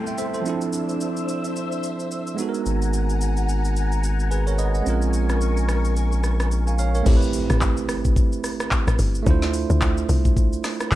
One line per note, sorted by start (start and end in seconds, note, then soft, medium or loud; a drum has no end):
0.00 0.40 G3 medium
0.00 0.44 A3 medium
0.00 0.41 B3 medium
0.00 0.42 C4 medium
0.00 0.43 E4 medium
0.00 0.35 A4 medium
0.00 0.44 A4 medium
0.00 0.44 G5 medium
0.00 0.44 C6 medium
0.00 downlifter medium
0.07 0.17 E5 medium
0.07 0.18 G5 medium
0.07 shaker medium
0.18 0.33 C5 medium
0.18 0.33 E5 medium
0.18 shaker medium
0.34 0.48 A4 medium
0.34 0.60 C5 medium
0.34 shaker soft
0.42 2.32 F3 medium
0.42 2.33 C4 medium
0.42 2.34 D4 medium
0.46 2.36 D4 medium
0.46 2.35 E4 medium
0.46 2.36 A4 medium
0.46 2.36 C5 medium
0.46 2.37 E5 medium
0.46 2.36 E6 medium
0.46 shaker medium
0.61 shaker medium
0.73 shaker medium
0.89 shaker medium
1.01 shaker medium
1.17 shaker medium
1.29 shaker medium
1.44 shaker medium
1.56 shaker medium
1.72 shaker soft
1.83 shaker medium
2.00 shaker soft
2.11 shaker medium
2.27 shaker medium
2.35 4.53 G#3 medium
2.35 4.54 B3 medium
2.35 4.55 D#4 medium
2.35 4.84 F#5 medium
2.35 4.84 G#5 medium
2.35 4.84 A#5 medium
2.35 shaker medium
2.40 4.56 F#4 medium
2.40 2.48 A4 medium
2.49 4.33 A#4 medium
2.54 shaker soft
2.66 4.82 G#1 medium
2.66 shaker medium
2.82 shaker medium
2.93 shaker medium
3.10 shaker medium
3.21 shaker medium
3.37 shaker medium
3.49 shaker medium
3.65 shaker medium
3.76 shaker medium
3.92 shaker soft
4.04 shaker medium
4.20 shaker soft
4.31 4.46 G#4 medium
4.31 4.46 B4 medium
4.31 shaker medium
4.47 4.58 A#4 medium
4.47 4.58 C#5 medium
4.47 shaker medium
4.58 4.74 B4 medium
4.58 4.74 D#5 medium
4.58 shaker medium
4.74 5.01 D#5 medium
4.74 5.01 F#5 medium
4.74 shaker soft
4.82 7.02 A#1 medium
4.82 7.00 G#3 medium
4.82 7.01 C4 medium
4.82 7.02 C#4 medium
4.82 7.04 A#4 medium
4.82 7.04 C#6 medium
4.82 shaker medium
4.86 7.03 F4 medium
4.86 6.50 A#4 medium
4.86 7.04 G#5 medium
5.02 shaker medium
5.13 shaker medium
5.29 cross-stick medium
5.29 shaker medium
5.41 shaker medium
5.57 shaker medium
5.69 cross-stick loud
5.69 shaker medium
5.85 shaker medium
5.96 shaker medium
6.12 shaker soft
6.24 cross-stick medium
6.24 shaker medium
6.40 cross-stick loud
6.40 shaker soft
6.52 shaker medium
6.67 6.78 F5 medium
6.67 6.78 G#5 medium
6.67 shaker medium
6.79 6.94 C#5 medium
6.79 6.94 F5 medium
6.79 shaker medium
6.95 7.21 A#4 medium
6.95 7.21 C#5 medium
6.95 shaker medium
7.03 7.45 A1 loud
7.03 9.21 A3 medium
7.03 9.22 C4 medium
7.03 9.23 E4 medium
7.03 kick loud
7.03 crash loud
7.03 impact medium
7.03 shaker medium
7.08 9.24 G4 medium
7.08 7.16 A4 medium
7.17 9.28 B4 medium
7.22 shaker medium
7.33 open hi-hat medium
7.33 shaker loud
7.50 7.91 A1 loud
7.50 cross-stick loud
7.50 shaker medium
7.61 kick loud
7.61 clap medium
7.61 shaker medium
7.77 shaker medium
7.89 8.38 G1 medium
7.89 cross-stick loud
7.89 open hi-hat soft
7.89 shaker medium
8.05 kick loud
8.05 shaker medium
8.16 kick loud
8.16 shaker medium
8.32 shaker medium
8.44 cross-stick medium
8.44 open hi-hat medium
8.44 shaker medium
8.60 cross-stick loud
8.60 shaker medium
8.71 kick medium
8.71 clap loud
8.71 shaker medium
8.87 8.98 A1 medium
8.87 cross-stick loud
8.87 shaker medium
8.99 9.23 G1 medium
8.99 open hi-hat medium
8.99 shaker medium
9.15 shaker medium
9.23 9.65 D2 loud
9.23 10.95 A3 medium
9.23 10.95 D4 medium
9.23 10.95 E4 medium
9.23 kick loud
9.23 shaker medium
9.29 10.95 F4 medium
9.29 10.95 C5 medium
9.42 snare medium
9.42 shaker medium
9.54 open hi-hat medium
9.54 shaker loud
9.70 10.04 D2 loud
9.70 shaker medium
9.82 kick loud
9.82 clap loud
9.82 shaker medium
9.97 shaker medium
10.09 10.58 C2 medium
10.09 open hi-hat soft
10.09 shaker medium
10.25 kick loud
10.25 shaker medium
10.37 kick loud
10.37 shaker medium
10.53 shaker medium
10.64 cross-stick medium
10.64 snare medium
10.64 open hi-hat medium
10.64 shaker medium
10.80 cross-stick loud
10.80 shaker medium
10.91 10.95 C2 medium
10.91 kick loud
10.91 clap medium
10.91 shaker medium